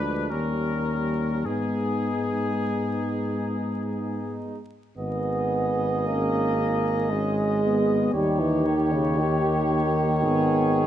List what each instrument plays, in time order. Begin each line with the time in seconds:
Already playing: tuba D2, euphonium F3, trombone section G#3, flugelhorn D4, trumpet section B4
0.30 tuba D#2, euphonium G3, trombone section A#3, flugelhorn C#4, trumpet section A#4
0.88 euphonium G3
1.45 tuba G#2, euphonium G#3, trombone section B3, flugelhorn D#4, trumpet section G#4
4.97 tuba G#1, euphonium B3, flugelhorn G#4, trumpet section D#5
6.06 euphonium A#3, trombone section C#4
6.60 trombone section D#4
7.10 euphonium G#3, trombone section C#4
7.63 trombone section B3
8.13 tuba D#2, euphonium G3, trombone section D#4, flugelhorn G4, trumpet section C#5
8.39 euphonium E3
8.66 euphonium D#3
8.92 euphonium C#3
9.18 euphonium D#3, trombone section G4
9.73 trombone section A#3
10.24 tuba G#1, trombone section B3, flugelhorn G#4
10.82 trombone section C#4